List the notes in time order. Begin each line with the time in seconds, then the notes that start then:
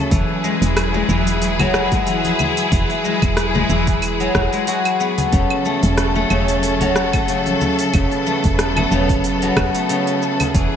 Already playing: C#3 F#3 A3
0.11 E1 E3 E4 G#4, kick, open hi-hat, shaker
0.29 high bongo
0.44 G#3, high conga, shaker
0.62 E1, open hi-hat, shaker
0.77 cross-stick, open hi-hat, claves, shaker
0.94 G#3, high bongo, high conga
1.09 E1 E3, shaker
1.27 open hi-hat, shaker
1.42 open hi-hat, shaker
1.59 F#3, open hi-hat, low conga, claves
1.74 cross-stick, shaker
1.92 G#3, kick, open hi-hat, high bongo, shaker
2.07 E3, open hi-hat, shaker
2.25 open hi-hat, high conga
2.39 low conga, claves, shaker
2.57 open hi-hat, shaker
2.72 E1 E3, kick, open hi-hat, shaker
2.90 open hi-hat, high bongo
3.04 G#3, high conga, shaker
3.22 E1, kick, open hi-hat, claves, shaker
3.37 cross-stick, open hi-hat, shaker
3.55 G#3, high bongo, high conga, low conga
3.69 E1 E3, high conga, shaker
3.87 kick, open hi-hat, shaker
4.02 open hi-hat, claves, shaker
4.20 F#3, open hi-hat
4.35 E1, kick, cross-stick, shaker
4.53 G#3, open hi-hat, shaker
4.67 F#4, open hi-hat, shaker
4.85 open hi-hat, claves
5.00 B3, shaker
5.18 open hi-hat, low conga, shaker
5.33 E1 C#3 F#3 C#4 A4, kick, open hi-hat, shaker
5.50 high bongo, claves
5.65 A3, high conga, shaker
5.83 E1, open hi-hat, shaker
5.98 cross-stick, open hi-hat, shaker
6.16 A3, high bongo, high conga
6.30 E1 C#3, claves, shaker
6.48 open hi-hat, shaker
6.63 open hi-hat, shaker
6.81 F#3, open hi-hat, low conga
6.96 cross-stick, shaker
7.13 A3, kick, open hi-hat, high bongo, claves, shaker
7.28 C#3, open hi-hat, shaker
7.46 open hi-hat, high conga
7.61 low conga, shaker
7.79 open hi-hat, shaker
7.94 E1 C#3 B3, kick, open hi-hat, claves, shaker
8.11 open hi-hat, high bongo
8.26 A3, high conga, shaker
8.44 E1, kick, open hi-hat, shaker
8.59 cross-stick, open hi-hat, shaker
8.76 A3, high bongo, high conga, low conga, claves
8.91 E1 C#3, high conga, shaker
9.09 kick, open hi-hat, shaker
9.24 open hi-hat, shaker
9.42 F#3, open hi-hat
9.57 E1, kick, cross-stick, claves, shaker
9.75 A3, open hi-hat, shaker
9.89 C#3, open hi-hat, shaker
10.07 open hi-hat
10.22 shaker
10.40 open hi-hat, low conga, claves, shaker
10.54 E1 E3 F#3 E4 G#4, kick, open hi-hat, shaker
10.72 high bongo